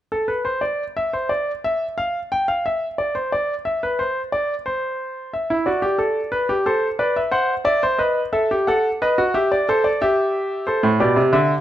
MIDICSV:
0, 0, Header, 1, 2, 480
1, 0, Start_track
1, 0, Key_signature, 0, "minor"
1, 0, Tempo, 672646
1, 1888, Time_signature, 4, 2, 24, 8
1, 3804, Tempo, 665188
1, 8334, End_track
2, 0, Start_track
2, 0, Title_t, "Grand piano"
2, 0, Program_c, 0, 0
2, 84, Note_on_c, 0, 69, 63
2, 200, Note_on_c, 0, 71, 58
2, 202, Note_off_c, 0, 69, 0
2, 319, Note_on_c, 0, 72, 62
2, 320, Note_off_c, 0, 71, 0
2, 437, Note_on_c, 0, 74, 63
2, 440, Note_off_c, 0, 72, 0
2, 591, Note_off_c, 0, 74, 0
2, 689, Note_on_c, 0, 76, 64
2, 807, Note_off_c, 0, 76, 0
2, 809, Note_on_c, 0, 72, 59
2, 923, Note_on_c, 0, 74, 64
2, 928, Note_off_c, 0, 72, 0
2, 1075, Note_off_c, 0, 74, 0
2, 1173, Note_on_c, 0, 76, 66
2, 1321, Note_off_c, 0, 76, 0
2, 1410, Note_on_c, 0, 77, 70
2, 1558, Note_off_c, 0, 77, 0
2, 1654, Note_on_c, 0, 79, 70
2, 1768, Note_off_c, 0, 79, 0
2, 1771, Note_on_c, 0, 77, 67
2, 1886, Note_off_c, 0, 77, 0
2, 1896, Note_on_c, 0, 76, 61
2, 2042, Note_off_c, 0, 76, 0
2, 2129, Note_on_c, 0, 74, 61
2, 2245, Note_off_c, 0, 74, 0
2, 2247, Note_on_c, 0, 72, 59
2, 2365, Note_off_c, 0, 72, 0
2, 2372, Note_on_c, 0, 74, 66
2, 2520, Note_off_c, 0, 74, 0
2, 2606, Note_on_c, 0, 76, 61
2, 2724, Note_off_c, 0, 76, 0
2, 2734, Note_on_c, 0, 71, 62
2, 2847, Note_off_c, 0, 71, 0
2, 2847, Note_on_c, 0, 72, 66
2, 2995, Note_off_c, 0, 72, 0
2, 3086, Note_on_c, 0, 74, 65
2, 3235, Note_off_c, 0, 74, 0
2, 3324, Note_on_c, 0, 72, 67
2, 3789, Note_off_c, 0, 72, 0
2, 3807, Note_on_c, 0, 76, 52
2, 3928, Note_on_c, 0, 64, 67
2, 3956, Note_off_c, 0, 76, 0
2, 4041, Note_on_c, 0, 74, 54
2, 4043, Note_off_c, 0, 64, 0
2, 4046, Note_on_c, 0, 66, 64
2, 4158, Note_on_c, 0, 67, 70
2, 4163, Note_off_c, 0, 66, 0
2, 4276, Note_on_c, 0, 69, 69
2, 4279, Note_off_c, 0, 67, 0
2, 4428, Note_off_c, 0, 69, 0
2, 4516, Note_on_c, 0, 71, 68
2, 4638, Note_off_c, 0, 71, 0
2, 4642, Note_on_c, 0, 67, 70
2, 4744, Note_off_c, 0, 74, 0
2, 4761, Note_off_c, 0, 67, 0
2, 4763, Note_on_c, 0, 69, 73
2, 4766, Note_on_c, 0, 72, 62
2, 4914, Note_off_c, 0, 69, 0
2, 4916, Note_off_c, 0, 72, 0
2, 5002, Note_on_c, 0, 71, 71
2, 5002, Note_on_c, 0, 74, 60
2, 5122, Note_off_c, 0, 74, 0
2, 5127, Note_on_c, 0, 76, 55
2, 5153, Note_off_c, 0, 71, 0
2, 5235, Note_on_c, 0, 72, 74
2, 5239, Note_on_c, 0, 78, 63
2, 5244, Note_off_c, 0, 76, 0
2, 5388, Note_off_c, 0, 72, 0
2, 5390, Note_off_c, 0, 78, 0
2, 5475, Note_on_c, 0, 76, 59
2, 5477, Note_on_c, 0, 74, 78
2, 5599, Note_off_c, 0, 74, 0
2, 5607, Note_on_c, 0, 72, 76
2, 5628, Note_off_c, 0, 76, 0
2, 5719, Note_on_c, 0, 75, 56
2, 5723, Note_on_c, 0, 71, 72
2, 5724, Note_off_c, 0, 72, 0
2, 5872, Note_off_c, 0, 75, 0
2, 5874, Note_off_c, 0, 71, 0
2, 5965, Note_on_c, 0, 76, 60
2, 5966, Note_on_c, 0, 69, 75
2, 6085, Note_off_c, 0, 69, 0
2, 6099, Note_on_c, 0, 67, 71
2, 6117, Note_off_c, 0, 76, 0
2, 6212, Note_off_c, 0, 67, 0
2, 6216, Note_on_c, 0, 78, 62
2, 6222, Note_on_c, 0, 69, 77
2, 6365, Note_off_c, 0, 78, 0
2, 6369, Note_off_c, 0, 69, 0
2, 6465, Note_on_c, 0, 71, 78
2, 6467, Note_on_c, 0, 75, 65
2, 6577, Note_off_c, 0, 71, 0
2, 6582, Note_on_c, 0, 66, 78
2, 6613, Note_off_c, 0, 75, 0
2, 6696, Note_off_c, 0, 66, 0
2, 6699, Note_on_c, 0, 76, 61
2, 6700, Note_on_c, 0, 67, 82
2, 6814, Note_off_c, 0, 76, 0
2, 6824, Note_on_c, 0, 74, 66
2, 6848, Note_off_c, 0, 67, 0
2, 6937, Note_off_c, 0, 74, 0
2, 6948, Note_on_c, 0, 69, 82
2, 6950, Note_on_c, 0, 72, 65
2, 7059, Note_off_c, 0, 72, 0
2, 7060, Note_on_c, 0, 74, 60
2, 7093, Note_off_c, 0, 69, 0
2, 7174, Note_off_c, 0, 74, 0
2, 7184, Note_on_c, 0, 76, 68
2, 7186, Note_on_c, 0, 67, 84
2, 7641, Note_off_c, 0, 76, 0
2, 7642, Note_off_c, 0, 67, 0
2, 7655, Note_on_c, 0, 72, 65
2, 7663, Note_on_c, 0, 69, 65
2, 7774, Note_on_c, 0, 45, 79
2, 7800, Note_off_c, 0, 72, 0
2, 7806, Note_off_c, 0, 69, 0
2, 7886, Note_off_c, 0, 45, 0
2, 7894, Note_on_c, 0, 67, 61
2, 7897, Note_on_c, 0, 47, 77
2, 7897, Note_on_c, 0, 74, 63
2, 8007, Note_off_c, 0, 47, 0
2, 8012, Note_on_c, 0, 48, 79
2, 8041, Note_off_c, 0, 74, 0
2, 8124, Note_off_c, 0, 48, 0
2, 8130, Note_on_c, 0, 50, 80
2, 8132, Note_on_c, 0, 76, 71
2, 8276, Note_off_c, 0, 50, 0
2, 8277, Note_off_c, 0, 76, 0
2, 8334, Note_off_c, 0, 67, 0
2, 8334, End_track
0, 0, End_of_file